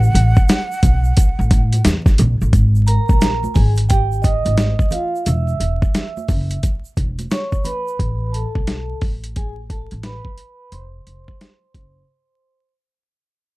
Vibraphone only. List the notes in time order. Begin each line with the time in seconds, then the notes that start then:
2.87 A#4 A#5
3.54 G#4 G#5
3.89 G4 G5
4.22 D#5 D#6
4.92 F4 F5
5.25 E5 E6
7.31 C#5 C#6
7.64 B4 B5
8.32 A4 A5
9.36 G#4 G#5
9.70 A4 A5
10.05 B4 B5
10.72 C5 C6